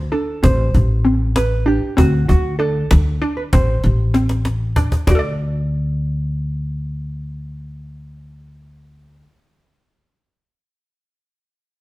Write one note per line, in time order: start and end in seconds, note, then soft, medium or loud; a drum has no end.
0.12 0.36 D4 medium
0.12 0.44 A4 medium
0.12 cajon slap soft
0.43 0.69 A1 medium
0.43 0.91 C4 medium
0.43 1.36 C5 medium
0.43 cajon bass loud
0.74 1.77 A1 medium
0.74 cajon bass medium
1.05 1.53 C4 medium
1.05 cajon slap soft
1.36 1.65 B4 medium
1.36 cajon slap medium
1.66 1.91 D4 medium
1.66 1.98 G4 medium
1.66 cajon slap soft
1.97 2.24 D2 medium
1.97 2.46 C4 medium
1.97 2.27 F#4 medium
1.97 cajon bass loud
2.28 2.81 D2 medium
2.28 2.58 F#4 medium
2.28 cajon bass medium
2.28 cajon slap soft
2.59 3.08 D4 medium
2.59 3.33 A4 medium
2.59 cajon slap soft
2.91 3.17 D2 medium
2.91 cajon slap medium
3.22 3.46 D4 medium
3.22 cajon slap soft
3.37 3.42 B4 medium
3.53 3.79 A1 medium
3.53 4.01 C4 medium
3.53 4.46 C5 medium
3.53 cajon bass loud
3.84 4.87 A1 medium
3.84 cajon slap soft
4.14 4.63 C4 medium
4.14 cajon slap medium
4.29 cajon slap medium
4.45 cajon slap medium
4.76 5.00 D4 medium
4.76 cajon bass medium
4.92 cajon bass medium
5.07 9.22 D2 medium
5.07 9.21 D4 medium
5.07 9.25 F#4 medium
5.07 9.22 D5 medium
5.07 cajon bass medium
5.15 9.29 A4 medium
5.15 9.33 D5 medium